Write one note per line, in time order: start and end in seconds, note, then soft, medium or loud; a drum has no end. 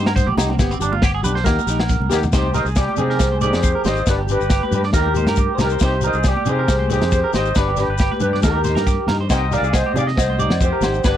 0.00 0.26 G2 medium
0.06 0.15 A#4 medium
0.06 snare medium
0.06 low agogo medium
0.16 0.27 C5 loud
0.16 kick medium
0.16 snare soft
0.16 shekere medium
0.27 0.36 A#1 medium
0.27 0.37 G4 medium
0.27 high conga medium
0.37 0.60 C2 medium
0.37 0.49 D#4 medium
0.37 0.52 D#4 medium
0.37 0.51 G4 medium
0.37 snare medium
0.37 low conga medium
0.37 low agogo medium
0.37 shekere medium
0.49 0.58 C4 medium
0.49 high conga medium
0.59 0.78 G1 medium
0.59 0.71 B3 medium
0.59 0.73 B3 medium
0.59 0.74 G4 medium
0.59 muted steel-string acoustic guitar stroke medium
0.59 kick medium
0.59 snare medium
0.59 low agogo medium
0.59 shekere loud
0.71 0.81 C4 medium
0.71 shekere soft
0.79 1.21 G1 medium
0.79 0.93 D4 medium
0.79 0.94 G4 medium
0.79 low conga medium
0.79 shekere medium
0.84 0.96 D4 soft
0.92 1.03 F4 medium
0.92 high conga medium
1.02 1.14 G4 medium
1.02 kick medium
1.02 snare medium
1.02 low agogo medium
1.02 shekere medium
1.14 1.24 G#4 medium
1.23 1.44 B1 medium
1.23 1.39 D4 soft
1.23 1.37 G4 medium
1.23 1.35 B4 loud
1.23 low conga medium
1.23 shekere medium
1.35 1.44 C5 loud
1.35 snare soft
1.44 1.57 D#2 medium
1.44 1.59 A#3 medium
1.44 1.60 D#4 medium
1.44 1.60 G4 medium
1.44 2.10 A#4 medium
1.44 kick medium
1.44 snare medium
1.44 low agogo medium
1.44 shekere medium
1.59 high conga medium
1.59 shekere soft
1.66 1.99 A#1 medium
1.66 1.82 D#4 soft
1.66 1.81 G4 medium
1.66 snare soft
1.66 shekere medium
1.79 snare medium
1.79 low agogo medium
1.89 kick medium
1.89 snare soft
1.89 low conga medium
1.89 shekere medium
2.00 2.09 C2 medium
2.00 high conga medium
2.09 2.31 D#2 medium
2.09 2.26 D#4 medium
2.09 2.24 G4 medium
2.09 2.17 G4 medium
2.09 2.17 A#4 medium
2.09 snare medium
2.09 low agogo medium
2.09 shekere medium
2.14 2.24 G4 medium
2.22 floor tom medium
2.22 high conga medium
2.22 shekere soft
2.32 2.64 C2 medium
2.32 2.46 C4 medium
2.32 2.47 D#4 medium
2.32 2.54 G4 medium
2.32 2.48 G4 medium
2.32 2.54 C5 medium
2.32 2.53 C5 medium
2.32 kick medium
2.32 snare medium
2.32 shekere medium
2.54 2.70 D#4 soft
2.54 2.68 G4 soft
2.54 2.65 A#4 medium
2.54 2.60 C5 medium
2.54 2.67 C5 medium
2.54 2.60 D#5 medium
2.54 snare soft
2.54 shekere medium
2.65 2.86 C2 medium
2.65 2.86 G#4 medium
2.65 shekere soft
2.76 2.97 G4 medium
2.76 2.98 G4 medium
2.76 2.97 D5 medium
2.76 kick medium
2.76 snare medium
2.76 shekere medium
2.88 2.97 G4 medium
2.88 high conga medium
2.97 3.18 C3 medium
2.97 3.12 G4 soft
2.97 3.39 G4 medium
2.97 3.09 G#4 medium
2.97 3.39 G#4 medium
2.97 3.39 C5 medium
2.97 low conga medium
2.97 shekere medium
3.02 3.14 D#4 soft
3.10 3.31 A#4 medium
3.10 snare soft
3.19 3.51 C2 medium
3.19 kick medium
3.19 snare medium
3.19 shekere medium
3.32 3.41 C5 medium
3.32 high conga medium
3.41 3.55 G4 medium
3.41 3.84 G4 medium
3.41 3.82 G#4 medium
3.41 3.83 C5 medium
3.41 3.62 D5 medium
3.41 high conga medium
3.41 shekere medium
3.46 3.57 D#4 soft
3.53 3.74 F2 medium
3.53 snare medium
3.53 low conga medium
3.53 shekere soft
3.63 3.74 C5 medium
3.63 kick medium
3.63 shekere medium
3.75 3.85 A#4 medium
3.84 4.05 G#1 medium
3.84 3.99 G4 medium
3.84 4.06 C5 medium
3.84 4.07 C5 medium
3.84 4.06 D#5 medium
3.84 snare medium
3.84 low conga medium
3.84 shekere medium
3.89 4.01 D#4 soft
3.96 shekere soft
4.06 4.38 G1 loud
4.06 4.21 B3 medium
4.06 4.21 D4 medium
4.06 4.22 G4 medium
4.06 4.14 B4 medium
4.06 4.15 D5 loud
4.06 muted clean electric guitar stroke medium
4.06 kick medium
4.06 snare medium
4.06 shekere medium
4.11 4.20 B4 medium
4.19 4.39 G4 medium
4.27 4.43 D4 soft
4.27 4.41 G4 medium
4.27 4.70 G4 medium
4.27 shekere medium
4.31 4.71 G4 medium
4.31 4.73 B4 medium
4.39 4.61 G1 medium
4.39 4.50 B4 medium
4.39 shekere soft
4.50 4.61 G4 medium
4.50 kick medium
4.50 snare medium
4.50 shekere medium
4.63 4.83 B4 medium
4.63 high conga medium
4.71 4.92 G2 medium
4.71 4.87 D4 soft
4.71 4.85 G4 soft
4.71 4.80 G4 medium
4.71 4.84 G4 medium
4.71 4.80 B4 medium
4.71 low conga medium
4.71 shekere medium
4.83 4.94 D5 medium
4.83 snare soft
4.93 5.25 D#2 medium
4.93 5.07 A#3 medium
4.93 5.08 D#4 medium
4.93 5.50 G4 medium
4.93 5.09 G4 medium
4.93 5.15 A#4 medium
4.93 5.51 A#4 medium
4.93 kick medium
4.93 snare medium
4.93 shekere medium
4.97 5.52 G4 medium
5.06 high conga medium
5.14 5.30 D#4 soft
5.14 5.29 G4 medium
5.14 5.27 C5 medium
5.14 high conga medium
5.14 shekere medium
5.26 5.47 G2 medium
5.26 5.38 A#4 medium
5.26 snare medium
5.26 low conga medium
5.26 shekere soft
5.36 5.59 G4 medium
5.36 kick medium
5.36 shekere medium
5.55 5.79 C2 medium
5.55 5.73 G4 medium
5.55 5.60 G#4 medium
5.55 5.60 C5 medium
5.55 shekere medium
5.59 5.74 D#4 soft
5.59 5.81 G4 medium
5.59 5.71 A#4 medium
5.59 5.83 A#4 medium
5.59 snare medium
5.59 low conga medium
5.63 5.82 G4 medium
5.69 5.81 C5 medium
5.69 shekere soft
5.79 6.12 C2 loud
5.79 5.95 C4 medium
5.79 5.95 D#4 medium
5.79 5.96 G4 medium
5.79 6.03 G4 medium
5.79 6.03 C5 medium
5.79 kick medium
5.79 snare medium
5.79 shekere medium
5.84 6.03 G4 medium
5.84 6.03 C5 medium
6.01 6.17 G4 soft
6.01 6.15 A#4 medium
6.01 6.24 C5 medium
6.01 shekere medium
6.06 6.19 D#4 soft
6.06 6.25 C5 medium
6.06 6.27 D#5 medium
6.13 6.35 C2 medium
6.13 6.36 G#4 medium
6.13 shekere soft
6.24 6.46 G4 medium
6.24 6.48 D5 medium
6.24 kick medium
6.24 snare medium
6.24 shekere medium
6.28 6.47 G4 medium
6.37 6.46 G4 medium
6.37 high conga medium
6.46 6.67 C3 medium
6.46 6.62 D#4 soft
6.46 6.60 G4 soft
6.46 6.58 G#4 medium
6.46 6.88 G#4 medium
6.46 6.91 C5 medium
6.46 low conga medium
6.46 shekere medium
6.50 6.89 G4 medium
6.59 6.79 A#4 medium
6.68 7.00 C2 medium
6.68 kick medium
6.68 snare medium
6.68 shekere medium
6.79 6.89 C5 medium
6.79 high conga medium
6.90 7.04 G4 medium
6.90 7.32 G4 medium
6.90 7.31 G#4 medium
6.90 7.33 C5 medium
6.90 muted clean electric guitar stroke medium
6.90 snare soft
6.90 high conga medium
6.90 shekere medium
6.94 7.06 D#4 soft
7.02 7.22 F2 medium
7.02 snare medium
7.02 low conga medium
7.02 shekere soft
7.12 7.23 C5 medium
7.12 kick medium
7.12 snare soft
7.12 shekere medium
7.24 7.33 A#4 medium
7.33 7.54 G#1 medium
7.33 7.48 G4 medium
7.33 7.54 C5 medium
7.33 7.55 C5 medium
7.33 7.56 C5 medium
7.33 7.55 D#5 medium
7.33 snare medium
7.33 shekere medium
7.39 7.50 D#4 soft
7.46 shekere soft
7.55 7.87 G1 loud
7.55 7.69 B3 medium
7.55 7.70 D4 medium
7.55 7.71 G4 medium
7.55 7.76 B4 medium
7.55 7.67 B4 medium
7.55 7.77 B4 medium
7.55 7.79 D5 medium
7.55 kick medium
7.55 snare medium
7.55 shekere medium
7.68 7.88 G4 medium
7.76 8.18 G4 medium
7.76 8.19 G4 medium
7.76 8.18 B4 medium
7.76 snare soft
7.76 shekere medium
7.81 7.93 D4 soft
7.88 8.09 G1 medium
7.88 7.99 B4 medium
7.98 8.11 G4 medium
7.98 kick medium
7.98 snare medium
7.98 shekere medium
8.11 8.32 B4 medium
8.11 high conga medium
8.20 8.41 G2 medium
8.20 8.41 G4 medium
8.20 8.35 G4 soft
8.20 8.43 G4 medium
8.20 8.42 B4 medium
8.20 low conga medium
8.20 shekere medium
8.25 8.36 D4 soft
8.33 8.43 D5 medium
8.33 snare soft
8.33 high conga medium
8.42 8.74 D#2 medium
8.42 8.57 A#3 medium
8.42 8.58 D#4 medium
8.42 9.04 G4 medium
8.42 9.06 G4 medium
8.42 9.04 A#4 medium
8.42 8.64 A#4 medium
8.42 kick medium
8.42 snare medium
8.42 high conga medium
8.42 shekere medium
8.46 8.58 G4 medium
8.64 8.79 G4 soft
8.64 8.75 C5 medium
8.64 snare soft
8.64 shekere medium
8.69 8.81 D#4 soft
8.75 8.96 G2 medium
8.75 8.85 A#4 medium
8.75 snare medium
8.75 low conga medium
8.75 shekere soft
8.86 9.07 G4 medium
8.86 kick medium
8.86 snare soft
8.86 shekere medium
9.07 9.28 G2 medium
9.07 9.22 G4 medium
9.07 9.19 A#4 medium
9.07 snare medium
9.07 low conga medium
9.12 9.24 D#4 soft
9.21 9.29 C5 medium
9.30 9.61 C2 medium
9.30 9.44 C4 medium
9.30 9.44 D#4 medium
9.30 9.45 G4 medium
9.30 9.51 C5 medium
9.30 9.50 D#5 medium
9.30 9.51 G5 loud
9.30 kick medium
9.30 snare medium
9.30 low agogo medium
9.30 shekere medium
9.34 9.52 D#5 medium
9.51 9.67 D#4 soft
9.51 9.65 G4 soft
9.51 9.63 A#4 medium
9.51 9.72 D5 medium
9.51 9.73 F5 medium
9.51 snare soft
9.51 shekere medium
9.56 9.74 D5 medium
9.61 9.83 C2 medium
9.61 9.84 G#4 medium
9.61 shekere soft
9.73 9.94 C5 medium
9.73 9.95 C5 medium
9.73 9.95 D#5 medium
9.73 kick medium
9.73 snare medium
9.73 low agogo medium
9.73 shekere medium
9.84 9.95 G4 medium
9.84 high conga medium
9.94 10.15 C3 medium
9.94 10.09 G4 soft
9.94 10.06 G#4 medium
9.94 10.01 D5 medium
9.94 10.03 F5 medium
9.94 low conga medium
9.94 shekere medium
9.99 10.11 D#4 soft
9.99 10.08 D5 medium
10.07 10.28 D#5 medium
10.07 snare soft
10.17 10.49 C2 medium
10.17 10.57 C5 medium
10.17 10.60 C5 medium
10.17 10.63 D#5 medium
10.17 kick medium
10.17 snare medium
10.17 low agogo medium
10.17 shekere medium
10.29 10.39 C5 medium
10.29 high conga medium
10.39 10.54 D#4 soft
10.39 10.52 G4 medium
10.39 10.60 D5 medium
10.39 shekere medium
10.50 10.70 F2 medium
10.50 snare medium
10.50 low conga medium
10.50 low agogo medium
10.50 shekere soft
10.61 11.02 G4 medium
10.61 11.03 G4 medium
10.61 10.72 C5 medium
10.61 11.04 C5 medium
10.61 kick medium
10.61 shekere medium
10.72 10.82 A#4 medium
10.81 11.02 G#1 medium
10.81 10.96 G4 medium
10.81 11.04 C5 medium
10.81 snare medium
10.81 low conga medium
10.81 low agogo medium
10.81 shekere medium
10.85 10.97 D#4 soft
10.94 shekere soft
11.04 11.17 G1 medium
11.04 11.17 B3 medium
11.04 11.17 D4 medium
11.04 11.17 G4 medium
11.04 11.17 B4 medium
11.04 11.16 B4 medium
11.04 11.17 B4 medium
11.04 11.17 D5 loud
11.04 kick medium
11.04 snare medium
11.04 low agogo medium
11.04 shekere medium